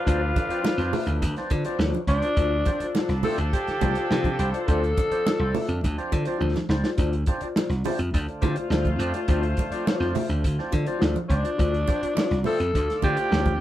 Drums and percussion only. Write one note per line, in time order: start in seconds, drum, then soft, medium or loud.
0.07 kick loud
0.07 closed hi-hat medium
0.36 kick medium
0.36 closed hi-hat medium
0.36 muted conga medium
0.50 closed hi-hat medium
0.64 snare loud
0.64 high conga medium
0.79 snare soft
0.79 closed hi-hat soft
0.93 open hi-hat medium
0.93 low conga medium
1.07 closed hi-hat medium
1.22 kick medium
1.22 closed hi-hat loud
1.22 muted conga soft
1.36 snare soft
1.36 closed hi-hat soft
1.50 kick medium
1.50 closed hi-hat medium
1.50 muted conga medium
1.65 closed hi-hat medium
1.80 snare loud
1.80 high conga medium
1.93 closed hi-hat soft
1.93 high conga medium
2.07 kick medium
2.07 closed hi-hat medium
2.22 closed hi-hat medium
2.37 kick loud
2.37 closed hi-hat medium
2.66 kick medium
2.66 closed hi-hat medium
2.66 muted conga medium
2.80 closed hi-hat medium
2.95 snare loud
2.95 high conga medium
3.09 snare soft
3.09 closed hi-hat soft
3.23 open hi-hat medium
3.23 low conga medium
3.38 closed hi-hat medium
3.53 kick medium
3.53 closed hi-hat medium
3.67 snare soft
3.67 closed hi-hat soft
3.81 kick medium
3.81 closed hi-hat medium
3.81 muted conga medium
3.81 low conga medium
3.95 closed hi-hat soft
4.11 snare loud
4.11 high conga medium
4.24 kick medium
4.24 closed hi-hat soft
4.24 high conga medium
4.39 closed hi-hat medium
4.54 closed hi-hat medium
4.68 kick loud
4.68 closed hi-hat medium
4.84 closed hi-hat soft
4.97 kick medium
4.97 closed hi-hat medium
4.97 muted conga medium
5.11 closed hi-hat medium
5.26 snare loud
5.26 high conga medium
5.55 open hi-hat medium
5.55 low conga medium
5.69 closed hi-hat medium
5.84 kick medium
5.84 closed hi-hat medium
5.84 muted conga soft
5.98 closed hi-hat soft
6.12 kick medium
6.12 closed hi-hat medium
6.12 muted conga medium
6.25 closed hi-hat medium
6.42 high conga medium
6.56 snare medium
6.56 high conga medium
6.70 snare loud
6.84 snare medium
6.98 kick loud
6.98 closed hi-hat medium
7.13 closed hi-hat soft
7.26 kick medium
7.26 closed hi-hat medium
7.26 muted conga medium
7.41 closed hi-hat soft
7.56 snare loud
7.56 high conga medium
7.70 snare soft
7.70 closed hi-hat soft
7.84 open hi-hat medium
7.84 low conga medium
7.99 closed hi-hat medium
8.14 kick medium
8.14 closed hi-hat medium
8.28 closed hi-hat soft
8.42 kick medium
8.42 closed hi-hat medium
8.42 muted conga medium
8.42 low conga medium
8.56 closed hi-hat soft
8.71 snare medium
8.71 high conga medium
8.85 kick medium
8.85 closed hi-hat soft
8.85 high conga medium
9.00 closed hi-hat medium
9.14 closed hi-hat medium
9.28 kick loud
9.28 closed hi-hat medium
9.43 closed hi-hat soft
9.57 kick medium
9.57 closed hi-hat medium
9.57 muted conga medium
9.72 closed hi-hat medium
9.87 snare loud
9.87 high conga medium
10.01 snare soft
10.15 open hi-hat medium
10.15 low conga medium
10.30 closed hi-hat medium
10.44 kick medium
10.44 closed hi-hat medium
10.59 snare soft
10.72 kick medium
10.72 closed hi-hat medium
10.72 muted conga medium
10.86 closed hi-hat medium
11.02 snare loud
11.02 high conga medium
11.16 closed hi-hat soft
11.16 high conga medium
11.30 kick medium
11.30 closed hi-hat medium
11.45 closed hi-hat medium
11.59 kick loud
11.59 closed hi-hat medium
11.74 closed hi-hat soft
11.88 kick medium
11.88 closed hi-hat medium
11.88 muted conga medium
12.03 closed hi-hat medium
12.17 snare loud
12.17 high conga medium
12.31 snare soft
12.31 closed hi-hat soft
12.44 open hi-hat medium
12.44 low conga medium
12.60 closed hi-hat soft
12.75 kick medium
12.75 closed hi-hat medium
12.90 snare soft
12.90 closed hi-hat soft
13.02 kick medium
13.02 closed hi-hat medium
13.02 muted conga medium
13.02 low conga medium
13.17 closed hi-hat soft
13.32 snare loud
13.32 high conga medium
13.46 kick medium
13.46 closed hi-hat soft
13.46 high conga medium